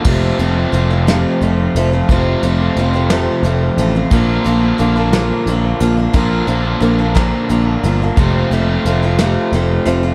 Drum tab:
CC |x-----|------|------|------|
HH |-xxxxx|xxxxxx|xxxxxx|xxxxxx|
SD |---o--|---o--|---o--|---o--|
BD |o-----|o-----|o-----|o--o--|

CC |------|
HH |xxxxxx|
SD |---o--|
BD |o-----|